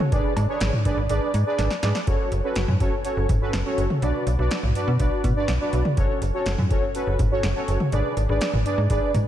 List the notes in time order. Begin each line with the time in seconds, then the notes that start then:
0.00 mid tom
0.12 G#1 D4 G#4 B4 D5, kick, closed hi-hat
0.36 G#2, closed hi-hat, cowbell
0.49 D4 G#4 B4 C#5
0.61 G#1, snare, closed hi-hat
0.73 mid tom
0.85 G#1 D4 G#4 B4 D5, kick, closed hi-hat
0.97 G#1
1.09 G#1 D4 G#4 B4 D5, closed hi-hat
1.34 G#2, closed hi-hat
1.46 D4 G#4 B4 D5
1.58 G#1, snare, closed hi-hat
1.71 snare
1.83 G#2 D4 G#4 B4 D5, snare, closed hi-hat
1.95 snare
2.07 F#1 C#4 F#4 A4 C#5, kick, closed hi-hat
2.32 F#1, closed hi-hat
2.44 C#4 F#4 A4 B4
2.56 F#1, snare, closed hi-hat
2.68 F#2, mid tom
2.80 F#1 C#4 F#4 A4 C#5, kick, closed hi-hat
3.05 C#4 F#4 A4 C#5, closed hi-hat
3.17 F#1
3.29 F#1, kick, closed hi-hat, mid tom
3.41 C#4 F#4 A4 B4
3.53 F#1, snare, closed hi-hat
3.66 C#4 F#4 A4 C#5
3.78 F#1, closed hi-hat
3.90 mid tom
4.02 B1 D4 F#4 B4 D5, closed hi-hat
4.27 B1, closed hi-hat
4.39 B1 D4 F#4 B4 D5
4.51 snare, closed hi-hat
4.63 B1, mid tom
4.75 D4 F#4 B4 D5, closed hi-hat
4.88 B2
5.00 B1 D4 F#4 B4 D5, kick, closed hi-hat
5.24 B2, kick, closed hi-hat, mid tom
5.36 D4 F#4 B4 D5
5.48 B1, snare, closed hi-hat
5.61 D4 F#4 B4 D5
5.73 B1, closed hi-hat
5.85 mid tom
5.97 F#1 C#4 F#4 A4 C#5, kick, closed hi-hat
6.22 F#1, closed hi-hat
6.34 C#4 F#4 A4 C#5
6.46 F#1, snare, closed hi-hat
6.58 F#2, mid tom
6.71 F#1 C#4 F#4 A4 C#5, kick, closed hi-hat
6.95 C#4 F#4 A4 B4, closed hi-hat
7.07 F#1
7.19 F#1, kick, closed hi-hat, mid tom
7.31 C#4 F#4 A4 C#5
7.43 F#1, snare, closed hi-hat
7.56 C#4 F#4 A4 C#5
7.68 F#1, closed hi-hat
7.80 mid tom
7.92 G#1 D4 G#4 B4 D5, closed hi-hat
8.17 G#1, closed hi-hat
8.29 G#1 D4 G#4 B4 D5
8.41 snare, closed hi-hat
8.53 G#1, mid tom
8.66 D4 G#4 B4 D5, closed hi-hat
8.78 G#2
8.90 G#1 D4 G#4 B4 D5, kick, closed hi-hat
9.14 G#2, closed hi-hat, mid tom